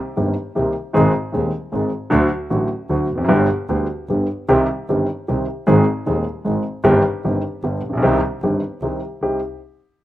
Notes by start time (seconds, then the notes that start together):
0.17 G1 G2 D#3 A#3 C4 G4
0.55 C2 C3 D#3 A#3 C4 G4
0.93 G#1 G#2 D#3 G#3 C4 G#4
1.32 D#1 D#2 D#3 G#3 C4 G#4
1.72 G#1 G#2 D#3 G#3 C4 G#4
2.10 D2 D3 F#3 A3 F#4
2.50 A1 A2 D3 F#3 A3 F#4
2.89 D2 D3 F#3 A3 F#4
3.11 F1
3.15 E2 F2
3.24 F#2
3.28 G1 G2 D3 G3 B3 G4
3.69 D2 D3 G3 B3 G4
4.09 G1 G2 D3 G3 B3 G4
4.49 C2 C3 D#3 G3 C4 G4
4.89 G1 G2 D#3 G3 C4 G4
5.28 C2 C3 D#3 G3 C4 G4
5.67 G#1 G#2 D#3 G#3 C4 G#4
6.06 D#1 D#2 D#3 G#3 C4 G#4
6.45 G#1 G#2 D#3 G#3 C4 G#4
6.84 G1 G2 D#3 G3 C4 G4
7.24 G1 G2 D#3 G3 C4 G4
7.63 G1 G2 D3 G3 B3 G4
7.82 A#1
7.89 A1 A#1
7.97 B1
8.02 C2 C3 D#3 G3 C4 G4
8.42 G1 G2 D#3 G3 C4 G4
8.81 C2 C3 D#3 G3 C4 G4
9.21 C2 C4 D#4 G4